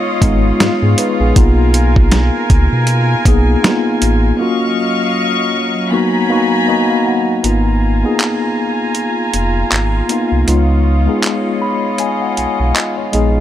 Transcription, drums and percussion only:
0.22 kick, closed hi-hat
0.60 snare, closed hi-hat
0.98 closed hi-hat
1.36 kick, closed hi-hat
1.74 closed hi-hat
1.96 kick
2.12 snare, closed hi-hat
2.50 kick, closed hi-hat
2.87 closed hi-hat
3.25 kick, closed hi-hat
3.64 snare, closed hi-hat
4.02 closed hi-hat
7.44 closed hi-hat
8.20 clap, closed hi-hat
8.95 closed hi-hat
9.34 closed hi-hat
9.72 clap, closed hi-hat
10.09 closed hi-hat
10.48 closed hi-hat
11.23 clap, closed hi-hat
11.98 closed hi-hat
12.37 closed hi-hat
12.76 clap, closed hi-hat
13.13 closed hi-hat

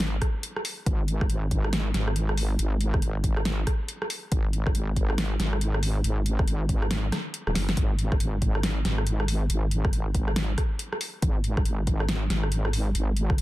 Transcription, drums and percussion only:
0.00 snare, closed hi-hat
0.22 kick, cross-stick, closed hi-hat
0.43 closed hi-hat
0.56 cross-stick
0.65 open hi-hat
0.86 kick, closed hi-hat
1.08 closed hi-hat
1.21 kick, cross-stick
1.30 closed hi-hat
1.51 kick, closed hi-hat
1.64 cross-stick
1.73 snare, closed hi-hat
1.94 snare, closed hi-hat
2.08 cross-stick
2.16 closed hi-hat
2.29 cross-stick
2.38 open hi-hat
2.59 closed hi-hat
2.81 closed hi-hat
2.94 kick, cross-stick
3.02 closed hi-hat
3.24 kick, closed hi-hat
3.37 cross-stick
3.45 snare, closed hi-hat
3.67 kick, cross-stick, closed hi-hat
3.88 closed hi-hat
4.02 cross-stick
4.10 open hi-hat
4.32 kick, closed hi-hat
4.53 closed hi-hat
4.67 kick, cross-stick
4.75 closed hi-hat
4.96 kick, closed hi-hat
5.10 cross-stick
5.18 snare, closed hi-hat
5.40 snare, closed hi-hat
5.53 cross-stick
5.61 closed hi-hat
5.74 cross-stick
5.83 open hi-hat
6.04 closed hi-hat
6.26 closed hi-hat
6.39 kick, cross-stick
6.48 closed hi-hat
6.69 kick, closed hi-hat
6.82 cross-stick
6.91 snare, closed hi-hat
7.12 cross-stick, snare, closed hi-hat
7.34 closed hi-hat
7.47 cross-stick
7.55 snare, open hi-hat
7.69 snare
7.77 kick, closed hi-hat
7.99 closed hi-hat
8.12 kick, cross-stick
8.20 closed hi-hat
8.42 kick, closed hi-hat
8.55 cross-stick
8.63 snare, closed hi-hat
8.85 snare, closed hi-hat
8.98 cross-stick
9.07 closed hi-hat
9.20 cross-stick
9.28 open hi-hat
9.50 closed hi-hat
9.71 closed hi-hat
9.85 kick, cross-stick
9.93 closed hi-hat
10.15 kick, closed hi-hat
10.28 cross-stick
10.36 snare, closed hi-hat
10.58 kick, cross-stick, closed hi-hat
10.79 closed hi-hat
10.93 cross-stick
11.01 open hi-hat
11.22 kick, closed hi-hat
11.44 closed hi-hat
11.57 kick, cross-stick
11.65 closed hi-hat
11.87 kick, closed hi-hat
12.00 cross-stick
12.09 snare, closed hi-hat
12.30 snare, closed hi-hat
12.43 cross-stick
12.52 closed hi-hat
12.65 cross-stick
12.73 open hi-hat
12.95 closed hi-hat
13.17 closed hi-hat
13.30 kick, cross-stick
13.38 closed hi-hat

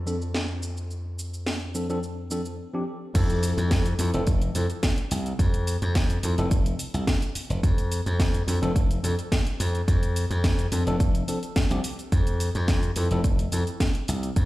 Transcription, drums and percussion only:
0.07 cabasa
0.22 cabasa
0.34 snare, cabasa
0.63 cabasa
0.77 cabasa
0.91 cabasa
1.19 cabasa
1.34 cabasa
1.47 snare, cabasa
1.75 cabasa
1.90 cabasa
2.03 cabasa
2.31 cabasa
2.45 cabasa
3.15 kick, closed hi-hat, crash, cabasa
3.30 closed hi-hat, cabasa
3.43 open hi-hat, cabasa
3.58 closed hi-hat, cabasa
3.71 kick, snare, closed hi-hat, cabasa
3.86 closed hi-hat, cabasa
3.99 open hi-hat, cabasa
4.14 closed hi-hat, cabasa
4.27 kick, closed hi-hat, cabasa
4.42 closed hi-hat, cabasa
4.55 open hi-hat, cabasa
4.70 closed hi-hat, cabasa
4.83 kick, snare, closed hi-hat, cabasa
4.98 closed hi-hat
5.11 open hi-hat, cabasa
5.26 closed hi-hat, cabasa
5.39 kick, closed hi-hat, cabasa
5.54 closed hi-hat, cabasa
5.67 open hi-hat, cabasa
5.82 closed hi-hat, cabasa
5.95 kick, snare, closed hi-hat, cabasa
6.10 closed hi-hat, cabasa
6.23 open hi-hat, cabasa
6.38 closed hi-hat, cabasa
6.51 kick, closed hi-hat, cabasa
6.66 closed hi-hat, cabasa
6.79 open hi-hat, cabasa
6.94 closed hi-hat, cabasa
7.07 kick, snare, closed hi-hat, cabasa
7.22 closed hi-hat, cabasa
7.35 open hi-hat, cabasa
7.50 closed hi-hat, cabasa
7.63 kick, closed hi-hat, cabasa
7.78 closed hi-hat, cabasa
7.92 open hi-hat, cabasa
8.06 closed hi-hat, cabasa
8.20 kick, snare, closed hi-hat, cabasa
8.34 closed hi-hat, cabasa
8.48 open hi-hat, cabasa
8.63 closed hi-hat, cabasa
8.76 kick, closed hi-hat, cabasa
8.91 closed hi-hat, cabasa
9.04 open hi-hat, cabasa
9.19 closed hi-hat, cabasa
9.32 kick, snare, closed hi-hat, cabasa
9.47 closed hi-hat
9.60 open hi-hat, cabasa
9.75 closed hi-hat, cabasa
9.88 kick, closed hi-hat, cabasa
10.03 closed hi-hat, cabasa
10.16 open hi-hat, cabasa
10.31 closed hi-hat, cabasa
10.44 kick, snare, closed hi-hat, cabasa
10.59 closed hi-hat, cabasa
10.72 open hi-hat, cabasa
10.87 closed hi-hat, cabasa
11.00 kick, closed hi-hat, cabasa
11.15 closed hi-hat, cabasa
11.28 open hi-hat, cabasa
11.43 closed hi-hat, cabasa
11.56 kick, snare, closed hi-hat, cabasa
11.71 closed hi-hat, cabasa
11.84 open hi-hat, cabasa
11.99 closed hi-hat, cabasa
12.12 kick, closed hi-hat, cabasa
12.27 closed hi-hat, cabasa
12.40 open hi-hat, cabasa
12.55 closed hi-hat, cabasa
12.68 kick, snare, closed hi-hat, cabasa
12.83 closed hi-hat, cabasa
12.96 open hi-hat, cabasa
13.11 closed hi-hat, cabasa
13.24 kick, closed hi-hat, cabasa
13.39 closed hi-hat, cabasa
13.52 open hi-hat, cabasa
13.67 closed hi-hat, cabasa
13.80 kick, snare, closed hi-hat, cabasa
13.95 closed hi-hat
14.08 open hi-hat, cabasa
14.23 closed hi-hat, cabasa
14.36 kick, closed hi-hat, cabasa

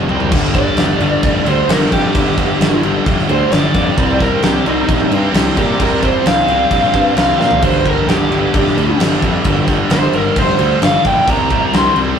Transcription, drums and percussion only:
0.09 mid tom
0.20 floor tom
0.32 kick, crash
0.55 kick, snare, crash
0.77 snare, crash
1.00 crash
1.23 kick, crash
1.46 crash
1.69 snare, crash
1.92 kick, crash
2.15 kick, crash
2.38 kick, crash
2.61 snare, crash
2.83 crash
3.06 kick, crash
3.19 snare
3.29 crash
3.52 snare, crash
3.74 kick, crash
3.98 kick, crash
4.20 kick, snare, crash
4.43 snare, crash
4.66 crash
4.89 kick, crash
5.12 crash
5.34 snare, crash
5.57 kick, crash
5.80 kick, crash
6.03 kick, crash
6.26 snare, crash
6.48 crash
6.71 kick, crash
6.93 kick, crash
7.17 snare, crash
7.41 snare
7.51 floor tom
7.62 kick, crash
7.86 kick, crash
8.09 snare, crash
8.32 crash
8.54 kick, crash
8.67 snare
8.78 crash
9.00 snare, crash
9.22 kick, crash
9.44 kick, crash
9.67 kick, snare, crash
9.90 snare, crash
10.13 crash
10.36 kick, crash
10.59 crash
10.82 snare, crash
11.05 kick, crash
11.28 kick, crash
11.50 kick, crash
11.73 snare, crash
11.96 crash

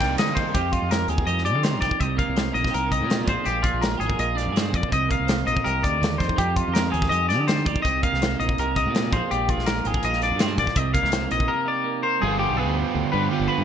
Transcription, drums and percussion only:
0.00 kick, snare, ride
0.18 snare, ride
0.37 kick, ride
0.55 kick, closed hi-hat
0.73 kick, closed hi-hat
0.91 snare, closed hi-hat
1.08 closed hi-hat
1.18 kick
1.27 closed hi-hat
1.38 snare
1.46 closed hi-hat
1.63 snare, closed hi-hat
1.81 kick, snare, closed hi-hat
1.91 kick
2.01 kick, closed hi-hat
2.19 kick, closed hi-hat
2.36 snare, closed hi-hat
2.55 closed hi-hat
2.64 kick, snare
2.74 closed hi-hat
2.92 kick, closed hi-hat
3.10 snare, closed hi-hat
3.27 kick, closed hi-hat
3.45 closed hi-hat
3.64 kick, closed hi-hat
3.82 snare, closed hi-hat
4.01 closed hi-hat
4.10 kick
4.19 closed hi-hat
4.38 snare, closed hi-hat
4.56 snare, closed hi-hat
4.74 kick, closed hi-hat
4.83 kick
4.92 kick, closed hi-hat
5.11 kick, closed hi-hat
5.28 snare, closed hi-hat
5.47 closed hi-hat
5.57 kick
5.66 closed hi-hat
5.84 kick, closed hi-hat
6.03 snare, closed hi-hat
6.20 kick, snare, closed hi-hat
6.29 kick
6.38 kick, closed hi-hat
6.56 kick, closed hi-hat
6.75 snare, closed hi-hat
6.94 closed hi-hat
7.02 kick, snare
7.12 closed hi-hat
7.30 snare, closed hi-hat
7.48 snare, closed hi-hat
7.66 kick, closed hi-hat
7.76 kick
7.85 kick, closed hi-hat
8.03 kick, closed hi-hat
8.14 snare
8.22 snare, closed hi-hat
8.40 closed hi-hat
8.49 kick
8.58 closed hi-hat
8.76 kick, closed hi-hat
8.95 snare, closed hi-hat
9.12 kick, closed hi-hat
9.31 closed hi-hat
9.49 kick, closed hi-hat
9.59 snare
9.66 snare, closed hi-hat
9.85 closed hi-hat
9.94 kick
10.03 closed hi-hat
10.13 snare
10.22 snare, closed hi-hat
10.39 snare, closed hi-hat
10.58 kick, snare, closed hi-hat
10.67 kick, snare
10.76 kick, closed hi-hat
10.95 kick, closed hi-hat
11.05 snare
11.12 snare, closed hi-hat
11.31 closed hi-hat
11.40 kick

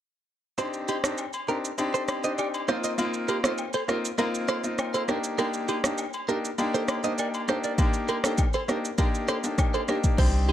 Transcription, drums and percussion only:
0.58 high agogo, shaker
0.73 shaker
0.88 high agogo, shaker
1.04 cross-stick, shaker
1.18 low woodblock, shaker
1.33 high agogo, shaker
1.49 shaker
1.65 shaker
1.78 high agogo, shaker
1.94 shaker
2.08 cross-stick, high agogo, shaker
2.24 shaker
2.38 low woodblock, shaker
2.54 high agogo, shaker
2.68 cross-stick, shaker
2.84 shaker
2.98 high agogo, shaker
3.14 shaker
3.28 high agogo, shaker
3.44 cross-stick, shaker
3.58 low woodblock, shaker
3.73 high agogo, shaker
3.89 cross-stick, shaker
4.05 shaker
4.18 high agogo, shaker
4.35 shaker
4.48 cross-stick, high agogo, shaker
4.64 shaker
4.78 cross-stick, low woodblock, shaker
4.94 high agogo, shaker
5.08 cross-stick, shaker
5.24 shaker
5.38 high agogo, shaker
5.54 shaker
5.68 high agogo, shaker
5.84 cross-stick, shaker
5.98 low woodblock, shaker
6.13 high agogo, shaker
6.29 shaker
6.45 shaker
6.58 high agogo, shaker
6.75 shaker
6.88 cross-stick, high agogo, shaker
7.04 shaker
7.18 low woodblock, shaker
7.34 high agogo, shaker
7.48 cross-stick, shaker
7.64 shaker
7.78 kick, high agogo, shaker
7.93 shaker
8.08 high agogo, shaker
8.24 cross-stick, shaker
8.38 kick, low woodblock, shaker
8.53 high agogo, shaker
8.69 cross-stick, shaker
8.85 shaker
8.98 kick, high agogo, shaker
9.15 shaker
9.28 cross-stick, high agogo, shaker
9.44 shaker
9.58 kick, cross-stick, low woodblock, shaker
9.74 high agogo, shaker
9.88 cross-stick, shaker
10.04 kick, shaker
10.18 kick, crash, high agogo
10.49 high agogo

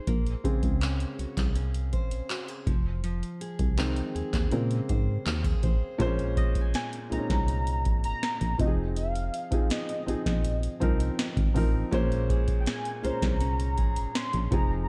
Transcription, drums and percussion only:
0.07 kick, closed hi-hat
0.26 closed hi-hat
0.45 kick, closed hi-hat
0.63 kick, closed hi-hat
0.81 clap, closed hi-hat
1.00 closed hi-hat
1.19 closed hi-hat
1.37 kick, clap, closed hi-hat
1.55 closed hi-hat
1.74 closed hi-hat
1.93 kick, closed hi-hat
2.11 closed hi-hat
2.30 clap, closed hi-hat
2.48 closed hi-hat
2.67 kick, closed hi-hat
3.04 closed hi-hat
3.23 closed hi-hat
3.41 closed hi-hat
3.59 kick, closed hi-hat
3.78 clap, closed hi-hat
3.96 closed hi-hat
4.16 closed hi-hat
4.33 kick, clap, closed hi-hat
4.52 closed hi-hat
4.71 closed hi-hat
4.89 kick, closed hi-hat
5.26 clap, closed hi-hat
5.44 kick, closed hi-hat
5.63 kick, closed hi-hat
6.00 kick, closed hi-hat
6.19 closed hi-hat
6.37 kick, closed hi-hat
6.55 kick, closed hi-hat
6.74 snare, closed hi-hat
6.93 closed hi-hat
7.12 closed hi-hat
7.30 kick, snare, closed hi-hat
7.48 closed hi-hat
7.67 closed hi-hat
7.85 kick, closed hi-hat
8.04 closed hi-hat
8.23 snare, closed hi-hat
8.41 closed hi-hat
8.59 kick, closed hi-hat
8.96 closed hi-hat
9.15 closed hi-hat
9.34 closed hi-hat
9.52 kick, closed hi-hat
9.70 snare, closed hi-hat
9.89 closed hi-hat
10.08 closed hi-hat
10.26 kick, snare, closed hi-hat
10.45 closed hi-hat
10.63 closed hi-hat
10.82 kick, closed hi-hat
11.00 closed hi-hat
11.19 snare, closed hi-hat
11.37 kick, closed hi-hat
11.56 kick, open hi-hat
11.93 kick, closed hi-hat
12.12 closed hi-hat
12.30 kick, closed hi-hat
12.48 kick, closed hi-hat
12.66 snare, closed hi-hat
12.85 closed hi-hat
13.05 closed hi-hat
13.22 kick, snare, closed hi-hat
13.41 closed hi-hat
13.60 closed hi-hat
13.78 kick, closed hi-hat
13.96 closed hi-hat
14.15 snare, closed hi-hat
14.33 closed hi-hat
14.52 kick, closed hi-hat

